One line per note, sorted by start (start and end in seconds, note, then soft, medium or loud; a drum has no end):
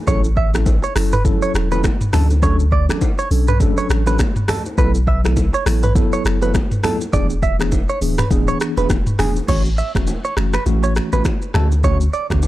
0.07 0.79 A1 loud
0.07 0.26 F#3 medium
0.07 0.26 C#4 medium
0.07 0.27 E4 medium
0.07 0.27 A4 loud
0.07 0.20 C#5 loud
0.07 kick loud
0.07 low conga medium
0.07 shaker medium
0.24 shaker medium
0.37 0.50 E5 medium
0.37 kick medium
0.53 0.69 F#3 medium
0.53 0.69 C#4 medium
0.53 0.69 E4 medium
0.53 0.69 A4 medium
0.53 finger snap medium
0.53 cross-stick medium
0.53 low bongo medium
0.53 shaker soft
0.66 kick loud
0.66 high bongo medium
0.66 shaker medium
0.83 0.93 C#5 medium
0.83 shaker medium
0.95 1.29 F#1 loud
0.95 1.15 F#3 medium
0.95 1.15 C#4 medium
0.95 1.15 E4 medium
0.95 1.15 A4 medium
0.95 finger snap medium
0.95 cross-stick loud
0.95 open hi-hat medium
0.95 shaker medium
1.12 1.22 B4 medium
1.12 mid tom loud
1.12 shaker medium
1.25 1.67 F#3 loud
1.25 1.67 C#4 medium
1.25 1.67 E4 medium
1.25 1.67 A4 loud
1.25 kick loud
1.25 low conga medium
1.25 shaker medium
1.42 1.52 C#5 medium
1.42 shaker medium
1.54 1.87 E1 loud
1.54 finger snap medium
1.54 cross-stick loud
1.54 shaker medium
1.71 1.87 F#3 medium
1.71 1.87 C#4 medium
1.71 1.87 E4 medium
1.71 1.87 A4 medium
1.71 1.81 B4 medium
1.71 low bongo medium
1.71 shaker medium
1.84 finger snap medium
1.84 kick loud
1.84 cross-stick medium
1.84 high bongo medium
1.84 low bongo medium
1.84 shaker medium
2.01 mid tom loud
2.01 shaker soft
2.13 2.88 D2 loud
2.13 2.32 F#3 medium
2.13 2.32 C#4 medium
2.13 2.32 D4 medium
2.13 2.26 A4 medium
2.13 2.33 A4 medium
2.13 finger snap medium
2.13 cross-stick loud
2.13 open hi-hat medium
2.13 low conga loud
2.13 shaker soft
2.30 high bongo medium
2.30 shaker medium
2.42 2.62 F#3 medium
2.42 2.62 C#4 medium
2.42 2.62 D4 medium
2.42 2.62 A4 loud
2.42 2.56 C#5 loud
2.42 kick loud
2.42 low conga medium
2.42 shaker medium
2.60 shaker medium
2.72 2.85 D5 medium
2.72 kick medium
2.89 3.04 F#3 medium
2.89 3.04 C#4 medium
2.89 3.04 D4 medium
2.89 3.05 A4 medium
2.89 finger snap medium
2.89 cross-stick medium
2.89 low bongo medium
2.89 shaker soft
3.01 kick loud
3.01 high bongo medium
3.01 shaker medium
3.19 3.28 C#5 medium
3.19 shaker medium
3.31 3.64 B1 medium
3.31 3.50 F#3 medium
3.31 3.50 C#4 medium
3.31 3.50 D4 medium
3.31 3.50 A4 medium
3.31 open hi-hat medium
3.31 shaker medium
3.48 3.58 B4 medium
3.48 mid tom loud
3.48 shaker medium
3.60 4.03 F#3 loud
3.60 4.03 C#4 medium
3.60 4.03 D4 medium
3.60 4.03 A4 loud
3.60 kick loud
3.60 low conga medium
3.60 shaker medium
3.77 3.87 C#5 medium
3.77 shaker medium
3.90 4.23 A1 medium
3.90 finger snap medium
3.90 cross-stick loud
3.90 shaker medium
4.06 4.22 F#3 medium
4.06 4.22 C#4 medium
4.06 4.22 D4 medium
4.06 4.22 A4 medium
4.06 4.16 B4 medium
4.06 low bongo medium
4.06 shaker medium
4.19 finger snap medium
4.19 kick loud
4.19 cross-stick medium
4.19 high bongo medium
4.19 low bongo medium
4.19 shaker medium
4.36 mid tom medium
4.36 shaker soft
4.48 4.62 A4 medium
4.48 finger snap medium
4.48 cross-stick loud
4.48 open hi-hat medium
4.48 low conga medium
4.48 shaker medium
4.66 high bongo medium
4.66 shaker medium
4.78 5.50 B1 loud
4.78 4.97 F#3 medium
4.78 4.97 B3 medium
4.78 4.97 E4 medium
4.78 4.97 A4 loud
4.78 4.91 B4 loud
4.78 kick loud
4.78 low conga medium
4.78 shaker medium
4.95 shaker medium
5.07 5.20 E5 medium
5.07 kick medium
5.24 5.40 F#3 medium
5.24 5.40 B3 medium
5.24 5.40 E4 medium
5.24 5.40 A4 medium
5.24 finger snap medium
5.24 cross-stick medium
5.24 low bongo medium
5.24 shaker soft
5.36 kick medium
5.36 high bongo medium
5.36 shaker medium
5.54 5.63 C#5 medium
5.54 shaker medium
5.66 5.99 A1 loud
5.66 5.85 F#3 medium
5.66 5.85 B3 medium
5.66 5.85 E4 medium
5.66 5.85 A4 medium
5.66 finger snap medium
5.66 cross-stick loud
5.66 open hi-hat medium
5.66 shaker medium
5.83 5.93 B4 medium
5.83 mid tom medium
5.83 shaker medium
5.95 6.38 F#3 loud
5.95 6.38 B3 medium
5.95 6.38 E4 medium
5.95 6.38 A4 loud
5.95 kick loud
5.95 low conga medium
5.95 shaker medium
6.13 6.22 C#5 medium
6.13 shaker medium
6.25 6.58 F#1 medium
6.25 finger snap medium
6.25 cross-stick loud
6.25 shaker medium
6.42 6.57 F#3 medium
6.42 6.57 B3 medium
6.42 6.57 E4 medium
6.42 6.57 A4 medium
6.42 6.52 B4 medium
6.42 low bongo medium
6.42 shaker medium
6.54 finger snap medium
6.54 kick loud
6.54 cross-stick medium
6.54 high bongo medium
6.54 low bongo medium
6.54 shaker medium
6.71 mid tom medium
6.71 shaker soft
6.83 7.03 F#3 medium
6.83 7.03 B3 medium
6.83 7.03 E4 medium
6.83 6.97 A4 medium
6.83 7.03 A4 medium
6.83 finger snap medium
6.83 cross-stick loud
6.83 open hi-hat medium
6.83 low conga medium
6.83 shaker medium
7.01 high bongo medium
7.01 shaker medium
7.13 7.85 E1 loud
7.13 7.32 E3 medium
7.13 7.32 B3 medium
7.13 7.32 D4 medium
7.13 7.33 G#4 loud
7.13 7.26 D5 loud
7.13 kick loud
7.13 low conga medium
7.13 shaker medium
7.30 shaker medium
7.42 7.56 E5 medium
7.42 kick medium
7.42 low bongo medium
7.42 shaker soft
7.59 7.75 E3 medium
7.59 7.75 B3 medium
7.59 7.75 D4 medium
7.59 7.75 G#4 medium
7.59 finger snap medium
7.59 cross-stick medium
7.59 low bongo medium
7.59 shaker soft
7.72 kick loud
7.72 high bongo medium
7.72 shaker medium
7.89 7.99 C#5 medium
7.89 shaker soft
8.01 8.22 D1 medium
8.01 8.21 E3 medium
8.01 8.21 B3 medium
8.01 8.21 D4 medium
8.01 8.21 G#4 medium
8.01 open hi-hat medium
8.01 shaker medium
8.18 8.28 B4 medium
8.18 finger snap medium
8.18 cross-stick loud
8.18 mid tom loud
8.18 shaker medium
8.30 8.52 D1 loud
8.30 8.73 E3 loud
8.30 8.73 B3 medium
8.30 8.73 D4 medium
8.30 8.73 G#4 loud
8.30 kick loud
8.30 low conga medium
8.30 shaker medium
8.48 8.57 C#5 medium
8.48 shaker medium
8.60 finger snap medium
8.60 cross-stick loud
8.60 shaker medium
8.77 8.86 E1 medium
8.77 8.92 E3 medium
8.77 8.93 B3 medium
8.77 8.93 D4 medium
8.77 8.93 G#4 medium
8.77 8.87 B4 medium
8.77 low bongo medium
8.77 shaker medium
8.90 9.11 E1 loud
8.90 finger snap medium
8.90 kick medium
8.90 cross-stick medium
8.90 high bongo medium
8.90 low bongo medium
8.90 shaker medium
9.07 mid tom medium
9.07 shaker soft
9.19 9.40 E1 medium
9.19 9.38 E3 medium
9.19 9.38 B3 medium
9.19 9.38 D4 medium
9.19 9.32 G#4 medium
9.19 9.38 G#4 medium
9.19 finger snap medium
9.19 cross-stick loud
9.19 open hi-hat medium
9.19 low conga medium
9.19 shaker medium
9.36 high bongo medium
9.36 shaker medium
9.48 9.82 A1 loud
9.48 9.68 E3 medium
9.48 9.68 A3 medium
9.48 9.68 C#4 medium
9.48 9.68 F#4 medium
9.48 9.61 C#5 loud
9.48 kick loud
9.48 crash medium
9.48 low conga medium
9.48 shaker medium
9.65 shaker medium
9.78 9.91 E5 medium
9.78 shaker soft
9.95 10.16 E1 medium
9.95 10.10 E3 medium
9.95 10.10 A3 medium
9.95 10.10 C#4 medium
9.95 10.10 F#4 medium
9.95 finger snap medium
9.95 kick medium
9.95 cross-stick medium
9.95 low bongo medium
9.95 shaker soft
10.07 high bongo medium
10.07 shaker medium
10.24 10.34 C#5 medium
10.24 shaker medium
10.37 10.58 F#1 medium
10.37 10.56 E3 medium
10.37 10.56 A3 medium
10.37 10.56 C#4 medium
10.37 10.56 F#4 medium
10.37 finger snap medium
10.37 cross-stick loud
10.53 10.63 B4 medium
10.53 finger snap medium
10.53 cross-stick loud
10.53 shaker medium
10.66 10.99 A1 loud
10.66 11.08 E3 medium
10.66 11.08 A3 medium
10.66 11.09 C#4 medium
10.66 11.09 F#4 loud
10.66 low conga medium
10.66 shaker medium
10.83 10.93 C#5 medium
10.83 shaker medium
10.96 finger snap medium
10.96 cross-stick loud
10.96 shaker medium
11.12 11.22 A1 medium
11.12 11.28 E3 medium
11.12 11.28 A3 medium
11.12 11.28 C#4 medium
11.12 11.28 F#4 medium
11.12 11.22 B4 medium
11.12 low bongo medium
11.12 shaker medium
11.25 finger snap medium
11.25 kick medium
11.25 cross-stick medium
11.25 high bongo medium
11.25 low bongo medium
11.25 shaker medium
11.42 shaker soft
11.54 12.09 D2 medium
11.54 11.73 D3 medium
11.54 11.74 A3 medium
11.54 11.74 C#4 medium
11.54 11.74 F#4 medium
11.54 11.67 A4 medium
11.54 finger snap medium
11.54 cross-stick loud
11.54 low conga medium
11.72 high bongo medium
11.72 shaker medium
11.84 12.03 D3 medium
11.84 12.03 A3 medium
11.84 12.03 C#4 medium
11.84 12.03 F#4 medium
11.84 11.97 C#5 loud
11.84 kick loud
11.84 low conga medium
11.84 shaker medium
12.01 shaker medium
12.13 12.26 D5 medium
12.13 shaker soft
12.30 12.47 D2 medium
12.30 12.45 D3 medium
12.30 12.46 A3 medium
12.30 12.46 C#4 medium
12.30 12.46 F#4 medium
12.30 finger snap medium
12.30 kick medium
12.30 cross-stick medium
12.30 low bongo medium
12.30 shaker soft
12.42 high bongo medium
12.42 shaker medium